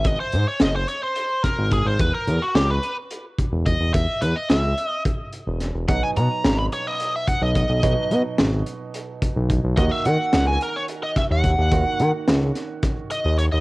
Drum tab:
HH |xxxxxxx|xxxxxxx|xxxxxxx|xxxxxxx|
SD |--o--o-|--o----|--o---o|--o----|
BD |o----oo|o----oo|o---o--|o----oo|

HH |xxxxxxx|xxxxxxx|xxxxxxx|
SD |--o----|--o--o-|--ooo--|
BD |o----oo|o----oo|o---o--|